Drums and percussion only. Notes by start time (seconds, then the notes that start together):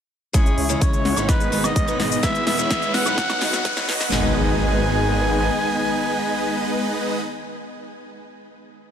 0.34 kick, snare, closed hi-hat, cabasa
0.46 closed hi-hat, cabasa
0.58 open hi-hat
0.70 closed hi-hat, cabasa
0.81 kick, closed hi-hat, cabasa
0.93 closed hi-hat, cabasa
1.05 snare, open hi-hat
1.17 closed hi-hat, cabasa, high woodblock
1.29 kick, snare, closed hi-hat, cabasa, high woodblock
1.40 closed hi-hat, cabasa
1.52 open hi-hat
1.64 snare, closed hi-hat, cabasa, high woodblock
1.76 kick, closed hi-hat, cabasa
1.88 closed hi-hat, cabasa
2.00 snare, open hi-hat
2.12 cabasa
2.23 kick, snare, closed hi-hat, cabasa
2.35 closed hi-hat, cabasa
2.47 snare, open hi-hat
2.59 closed hi-hat, cabasa
2.71 kick, snare, closed hi-hat, cabasa
2.82 closed hi-hat, cabasa
2.94 snare, open hi-hat
3.06 closed hi-hat, cabasa, high woodblock
3.18 kick, snare, closed hi-hat, cabasa
3.30 snare, closed hi-hat, cabasa, high woodblock
3.41 snare, open hi-hat
3.53 snare, closed hi-hat, cabasa
3.65 kick, snare, closed hi-hat, cabasa
3.77 snare, closed hi-hat, cabasa
3.89 snare, open hi-hat
4.01 snare, cabasa
4.12 snare, clap